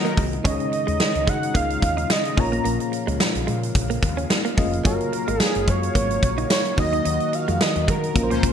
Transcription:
Already playing: D#3 F#3 A#3 D#4 F4 F#4 A#4 D#5
0.05 A#3, closed hi-hat
0.17 C2 G#3, kick, open hi-hat
0.33 closed hi-hat
0.44 C#2 C#3 G#3 C#4 D#4 C#5 D#5, kick, closed hi-hat
0.60 closed hi-hat
0.72 muted clean electric guitar stroke, closed hi-hat
0.87 D#2 G#3, closed hi-hat
1.00 snare, tambourine
1.15 C#2, closed hi-hat
1.27 C#3 G#3 F#5, kick, closed hi-hat
1.43 closed hi-hat
1.54 C#2 A#3 F5, kick, closed hi-hat
1.70 closed hi-hat
1.82 D#2, muted clean electric guitar stroke, kick, closed hi-hat
1.97 D#4, closed hi-hat
2.10 D#5, muted clean electric guitar stroke, snare, tambourine
2.25 closed hi-hat
2.36 A#1 A#2 F3 A#3 C#4 F4 C#5 F5 A#5, kick, open hi-hat
2.52 A#3, closed hi-hat
2.64 A#1 A#3, closed hi-hat
2.80 closed hi-hat
2.92 muted clean electric guitar stroke, closed hi-hat
3.07 C#2 G#3, closed hi-hat
3.20 snare, tambourine
3.35 A#1, closed hi-hat
3.47 A#2 G#3, closed hi-hat
3.63 closed hi-hat
3.75 A#1, kick, closed hi-hat
3.90 A#3, closed hi-hat
4.03 D#2, muted clean electric guitar stroke, kick, closed hi-hat
4.17 C#4, closed hi-hat
4.30 muted clean electric guitar stroke, snare, tambourine
4.45 A#3, closed hi-hat
4.57 F1 G#3 A#3 C#4 F4 D#5, kick, open hi-hat
4.73 closed hi-hat
4.84 F#1 F#3 A#3 F4 F#4 A#4 C#5, kick, closed hi-hat
5.00 closed hi-hat
5.13 muted clean electric guitar stroke, closed hi-hat
5.28 G#1 G#3, closed hi-hat
5.40 G#4, snare, tambourine
5.55 F#1, closed hi-hat
5.67 F#2 G#3 C#5, kick, closed hi-hat
5.83 closed hi-hat
5.95 G#1 A#3, kick, closed hi-hat
6.10 closed hi-hat
6.23 A#1, muted clean electric guitar stroke, kick, closed hi-hat
6.38 D#4, closed hi-hat
6.50 C#5, muted clean electric guitar stroke, snare, tambourine
6.65 closed hi-hat
6.77 D#2 D#3 A#3 C#4 D#4 F#4 D#5, kick, open hi-hat
6.93 D#4, closed hi-hat
7.05 D#2 D#4, closed hi-hat
7.20 closed hi-hat
7.33 F5, muted clean electric guitar stroke, closed hi-hat
7.48 F2 G#3, closed hi-hat
7.61 D#5, snare, tambourine
7.76 D#2, closed hi-hat
7.88 D#3 G#3 A#4, kick, closed hi-hat
8.04 closed hi-hat
8.14 A#1 A#2 C#3 A#3 C#4 F4 A#4 C5, kick, closed hi-hat
8.23 C5
8.31 C#2 F3 A#3 C#4 C5, closed hi-hat
8.43 C2, muted clean electric guitar stroke, kick, closed hi-hat

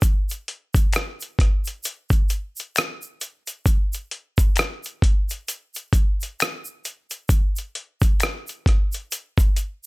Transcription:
0.02 kick, closed hi-hat, shaker
0.29 closed hi-hat, shaker
0.48 closed hi-hat
0.74 kick, closed hi-hat, shaker
0.93 finger snap, cross-stick, closed hi-hat, shaker
1.20 closed hi-hat, shaker
1.39 kick, cross-stick, closed hi-hat
1.65 closed hi-hat, shaker
1.84 closed hi-hat, shaker
2.10 kick, closed hi-hat, shaker
2.29 closed hi-hat, shaker
2.56 closed hi-hat, shaker
2.76 finger snap, cross-stick, closed hi-hat, shaker
3.02 shaker
3.21 closed hi-hat, shaker
3.47 closed hi-hat, shaker
3.66 kick, closed hi-hat, shaker
3.93 closed hi-hat, shaker
4.11 closed hi-hat
4.38 kick, closed hi-hat, shaker
4.56 finger snap, cross-stick, closed hi-hat, shaker
4.84 closed hi-hat, shaker
5.02 kick, closed hi-hat
5.29 closed hi-hat, shaker
5.48 closed hi-hat, shaker
5.75 closed hi-hat, shaker
5.93 kick, closed hi-hat, shaker
6.21 closed hi-hat, shaker
6.40 finger snap, cross-stick, closed hi-hat, shaker
6.65 shaker
6.85 closed hi-hat, shaker
7.11 closed hi-hat, shaker
7.29 kick, closed hi-hat, shaker
7.56 closed hi-hat, shaker
7.75 closed hi-hat
8.01 kick, closed hi-hat, shaker
8.20 finger snap, cross-stick, closed hi-hat, shaker
8.47 closed hi-hat, shaker
8.66 kick, cross-stick, closed hi-hat
8.92 closed hi-hat, shaker
9.12 closed hi-hat, shaker
9.38 kick, closed hi-hat, shaker
9.56 closed hi-hat, shaker

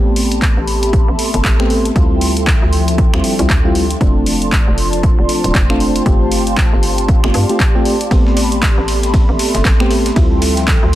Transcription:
Already playing: A1 A3 B3 C4 G4 A4 A5 B5 C6
0.16 open hi-hat
0.23 E5
0.32 closed hi-hat
0.42 kick, clap, closed hi-hat
0.57 A1
0.67 open hi-hat
0.83 closed hi-hat
0.93 kick, closed hi-hat
1.08 A1
1.19 open hi-hat
1.34 G1, closed hi-hat
1.44 A1, kick, clap, closed hi-hat
1.60 A3 B3 C4 G4, finger snap
1.70 open hi-hat
1.85 closed hi-hat
1.95 D2 F3 G3 C4 D4 E4 F4 E5 G5, kick, closed hi-hat
2.21 open hi-hat
2.37 closed hi-hat
2.47 kick, clap, closed hi-hat
2.62 D2
2.73 open hi-hat
2.88 closed hi-hat
2.98 kick, closed hi-hat
3.13 D2 G3 C4 E4 F4, finger snap
3.24 open hi-hat
3.39 C2 G3 C4 E4 F4, closed hi-hat
3.50 D2, kick, clap, closed hi-hat
3.65 G3 C4 E4 F4
3.75 open hi-hat
3.90 closed hi-hat
4.00 F1 A3 C4 D4 F4 D5 A5 C6, kick, closed hi-hat
4.26 open hi-hat
4.32 C5
4.42 closed hi-hat
4.52 kick, clap, closed hi-hat
4.67 F1
4.78 open hi-hat
4.93 G5 A5, closed hi-hat
5.03 kick, closed hi-hat
5.19 F1
5.29 open hi-hat
5.44 D1, closed hi-hat
5.55 F1, kick, clap, closed hi-hat
5.70 A3 C4 D4 F4, finger snap
5.80 open hi-hat
5.96 closed hi-hat
6.06 G1 A3 C4 F4 G4 F5, kick, closed hi-hat
6.31 D5, open hi-hat
6.47 closed hi-hat
6.57 kick, clap, closed hi-hat
6.73 G1
6.83 open hi-hat
6.98 closed hi-hat
7.08 kick, closed hi-hat
7.24 G1 A3 C4 F4 G4, finger snap
7.34 G2, open hi-hat
7.49 A3 C4 F4 G4, closed hi-hat
7.60 kick, clap, closed hi-hat
7.75 A3 C4 F4 G4
7.85 open hi-hat
8.01 closed hi-hat
8.11 A1 A3 B3 C4 G4 A4 B5 C6, kick, closed hi-hat, ride
8.26 snare
8.37 open hi-hat, ride
8.49 E5, closed hi-hat
8.62 kick, snare, clap, closed hi-hat, ride
8.78 A1
8.88 open hi-hat, ride
9.03 closed hi-hat, ride
9.14 kick, closed hi-hat, ride
9.29 A1
9.39 open hi-hat, ride
9.55 G1, snare, closed hi-hat
9.65 A1, kick, snare, clap, closed hi-hat, ride
9.80 A3 B3 C4 G4, finger snap, snare
9.91 snare, open hi-hat, ride
10.06 snare, closed hi-hat
10.16 D2 F3 G3 C4 D4 E4 F4 E5 G5, kick, closed hi-hat, ride
10.42 open hi-hat, ride
10.57 snare, closed hi-hat
10.67 kick, snare, clap, closed hi-hat, ride
10.83 D2

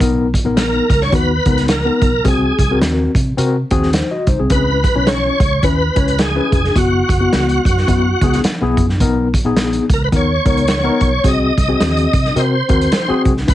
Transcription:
0.00 B1 B3 D#4 A#4, kick, closed hi-hat
0.34 kick, closed hi-hat
0.45 A#1 B3 D#4 A#4
0.57 A#4, snare, closed hi-hat
0.90 C#2, kick, closed hi-hat
1.01 C#5, snare
1.12 D#2 B3 D#4 F#4 B4, kick, closed hi-hat
1.46 C#2 B3 D#4 A#4, kick, closed hi-hat
1.58 snare, closed hi-hat
1.68 A#4, snare, closed hi-hat
1.85 B3 D#4 A#4
2.02 B1, kick, closed hi-hat
2.24 C2 C4 F#4 G#4, kick, closed hi-hat
2.59 C2, kick, closed hi-hat
2.71 C4 F#4 A#4
2.81 D#2, snare, closed hi-hat
3.15 C3, kick, closed hi-hat
3.37 C3 C4 F#4 A#4, closed hi-hat
3.71 D#2 C4 F#4 G#4, kick, closed hi-hat
3.83 snare
3.93 D#4 C5, snare, closed hi-hat
4.11 F#4 D#5
4.27 C2 D#4 C5, kick, closed hi-hat
4.40 C2 C4 G#4
4.50 C#2 C#4 E4 B4, kick, closed hi-hat
4.84 kick, closed hi-hat
4.95 B1 C#4 E4 C#5
5.07 C#5, snare, closed hi-hat
5.40 C#2, kick, closed hi-hat
5.63 D#2 C#4 E4 B4, kick, closed hi-hat
5.96 C#2 C#4 E4 C#5, kick, closed hi-hat
6.08 closed hi-hat
6.18 G#4, snare, closed hi-hat
6.35 C#4 E4 B4
6.52 F1, kick, closed hi-hat
6.64 snare
6.75 F#1 B3 E4 F#4, kick, closed hi-hat
7.09 F#1, kick, closed hi-hat
7.20 B3 E4 F#4
7.33 C#2, snare, closed hi-hat
7.49 closed hi-hat
7.65 F#2, kick, closed hi-hat
7.77 snare
7.88 F#2 B3 E4 F#4, kick, closed hi-hat
8.21 C#2 B3 E4 G#4, kick, closed hi-hat
8.33 snare, closed hi-hat
8.44 muted fingered electric bass stroke, snare, closed hi-hat
8.61 B1 B3 E4 G#4
8.77 F#2, kick, closed hi-hat
8.89 snare
9.00 B1 B3 D#4 A#4, kick, closed hi-hat
9.34 kick, closed hi-hat
9.45 A#1 B3 D#4 G#4
9.57 snare, closed hi-hat
9.73 closed hi-hat
9.90 C#2 A#4, kick, closed hi-hat
10.04 B4
10.12 D#2 B3 D#4 A#4, kick, closed hi-hat
10.16 C#5
10.45 C#2 B3 D#4 A#4, kick, closed hi-hat
10.57 closed hi-hat
10.68 snare, closed hi-hat
10.83 B3 D#4 A#4
11.01 B1, kick, closed hi-hat
11.24 C2 C4 F#4 G#4 D#5, kick, closed hi-hat
11.57 C2, kick, closed hi-hat
11.68 C4 F#4 G#4
11.80 D#2, snare, closed hi-hat
11.97 closed hi-hat
12.13 C3, kick, closed hi-hat
12.25 snare
12.36 C3 C4 F#4 A#4 C5, closed hi-hat
12.69 D#2 C4 F#4 A#4, kick, closed hi-hat
12.81 closed hi-hat
12.92 snare, closed hi-hat
13.08 C4 F#4 G#4, muted fingered electric bass stroke
13.25 C2, kick, closed hi-hat
13.37 snare
13.47 C#2 C#4 E4 B4, kick, closed hi-hat

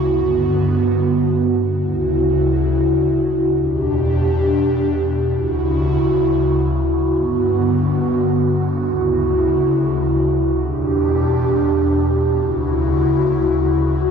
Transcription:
Already playing: F#4
0.05 G2 D3 B3
1.81 D2 C#3 E4 F#4
3.57 E2 B2 D4 G4
5.34 D2 C#3 E4 F#4
7.11 G2 D3 B3 F#4
8.87 D2 C#3 E4
10.63 E2 B2 D4 G4
12.40 D2 C#3 E4 F#4

